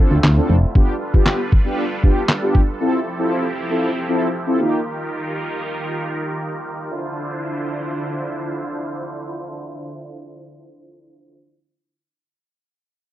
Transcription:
Already playing: D3 A3 C4 E4 F4
0.00 C4 D4 F4 A4
0.11 D2
0.24 D2, snare, clap
0.36 C4 D4 F4 A4
0.50 F1
0.75 G3 B3 D4 F4 G4 A4 B4, kick
1.13 B3 D4 F4 G4, kick
1.26 snare, clap
1.52 kick
1.65 B3 D4 F4 G4
2.03 B3 D4 F4 G4, kick
2.29 snare, clap
2.42 B3 D4 F4 G4
2.55 kick
2.80 F3 C4 E4 F4 G4 A4
3.19 C4 E4 F4 A4
3.70 C4 E4 F4 A4
4.08 C4 E4 F4 A4
4.47 C4 E4 F4 A4
4.60 D#3 A#3 D#4 F4 G4 A#4
6.91 D3 D4 E4 F4 C5

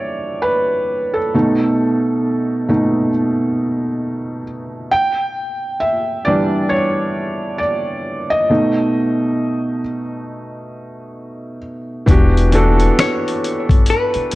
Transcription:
Already playing: E3 G3 D4 C#5 D5 E5
0.42 B4
1.14 A4
1.34 B2 A3 D#4
2.69 B2 A3 D#4
4.92 G5
5.80 E5
6.25 E3 G3 D4 D5
6.69 C#5
7.58 D5
8.30 D#5
8.49 B2 A3 D#4
12.06 E1 E3 B3 D4 F#4, kick, closed hi-hat
12.10 G4
12.37 closed hi-hat
12.51 E3 B3 D4 F#4 A4, closed hi-hat
12.80 closed hi-hat
12.99 C#5, finger snap, snare, closed hi-hat
13.28 closed hi-hat
13.44 closed hi-hat
13.69 G1, kick, closed hi-hat
13.86 B4, closed hi-hat
14.14 muted upright bass stroke, closed hi-hat
14.31 closed hi-hat

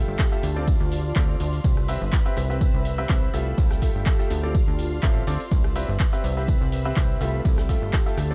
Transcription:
Already playing: A3 F4 G4 A4 E5 G5 E6, downlifter
0.04 G1 A5
0.19 kick, snare, clap, ride, shaker
0.31 A3 F4 G4 E5, snare
0.42 D2 F4 D5 C6 F6, open hi-hat, shaker
0.56 C4 F4 A4 D5
0.67 D5, kick, ride, shaker
0.80 D2
0.92 open hi-hat, shaker
0.98 C6
1.15 D2 C4 F4 A4 D5, kick, snare, clap, ride, shaker
1.29 closed hi-hat
1.40 D2, open hi-hat, shaker
1.53 open hi-hat
1.64 C2 B4 E5 B5 E6, kick, ride, shaker
1.77 cross-stick, closed hi-hat
1.88 C4 G4 B4 E5, open hi-hat, shaker
2.01 G1
2.12 C4, kick, snare, clap, ride, shaker
2.20 B5
2.26 C4 G4 B4 E5, snare
2.37 C2, cross-stick, open hi-hat, shaker
2.50 C4 G4 B4 E5, snare
2.61 kick, ride, shaker
2.74 C2
2.85 open hi-hat, shaker
2.98 C4 G4 B4 E5
3.09 C2 C4 G4 B4 E5, kick, snare, clap, ride, shaker
3.23 closed hi-hat
3.34 C2 A3 F4 G4 E5, open hi-hat, shaker
3.47 closed hi-hat
3.58 C2 G4 A4 G5 E6, kick, ride, shaker
3.71 cross-stick, snare
3.82 A3 F4 G4 E5, kick, snare, open hi-hat, shaker
3.91 G1 A5
4.06 kick, snare, clap, ride, shaker
4.19 A3 F4 G4 E5, snare
4.30 D2 F4 D5 C6 F6, open hi-hat, shaker
4.43 C4 F4 A4 D5
4.55 kick, ride, shaker
4.68 D2
4.79 open hi-hat, shaker
4.85 D5 C6
5.02 A1 C4 F4 A4 E5, kick, snare, clap, ride, shaker
5.15 closed hi-hat
5.27 D2 C4 F4 A4 D5, open hi-hat, shaker
5.40 open hi-hat
5.51 C2 B4 E5 B5 E6, kick, ride, shaker
5.64 cross-stick, closed hi-hat
5.76 C4 G4 B4 E5, open hi-hat, shaker
5.89 G1
5.99 C4, kick, snare, clap, ride, shaker
6.12 C4 G4 B4 E5, snare
6.23 C2, open hi-hat, shaker
6.37 C4 G4 B4 E5 B5, snare
6.48 kick, ride, shaker
6.61 C2
6.72 open hi-hat, shaker
6.85 C4 G4 B4 E5
6.96 C2 C4 E5, kick, snare, clap, ride, shaker
7.10 closed hi-hat
7.21 C2 A3 F4 G4 E5, open hi-hat, shaker
7.34 closed hi-hat
7.45 C2 G4 A4 G5 E6, kick, ride, shaker
7.58 cross-stick, snare
7.69 A3 F4 G4 E5, kick, snare, open hi-hat, shaker
7.78 G1 A5
7.93 kick, snare, clap, ride, shaker
8.06 A3 F4 G4 E5, snare
8.18 D2 F4 D5 C6 F6, cross-stick, open hi-hat, shaker
8.30 C4 F4 A4 D5

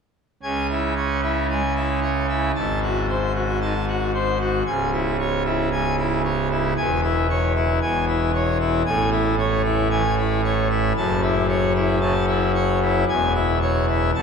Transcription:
0.43 C#2 C#3 G#5
0.70 E4
0.97 C#5
1.23 E4
1.50 G#3 G#5
1.76 E4
2.02 C#5
2.29 E4
2.55 G#1 G#2 A5
2.83 F#4
3.09 C5
3.35 F#4
3.62 D#3 A5
3.88 F#4
4.15 C5
4.41 F#4
4.67 C#1 C#2 G#5
4.93 E4
5.19 C#5
5.46 E4
5.72 G#2 G#5
5.99 E4
6.25 C#5
6.51 E4
6.77 E1 E2 G#5
7.04 E4
7.30 C#5
7.56 E4
7.82 E1 E2 G#5
8.08 E4
8.35 C#5
8.60 E4
8.86 A1 A2 G#5
9.12 E4
9.39 C#5
9.65 E4
9.91 E3 G#5
10.18 E4
10.45 C#5
10.71 E4
10.97 F#1 F#2 A5
11.23 E4
11.49 C#5
11.76 E4
12.01 C#3 A5
12.28 E4
12.55 C#5
12.82 E4
13.09 E1 E2 G#5
13.35 E4
13.62 C#5
13.88 E4
14.15 F#1 F#2 A5

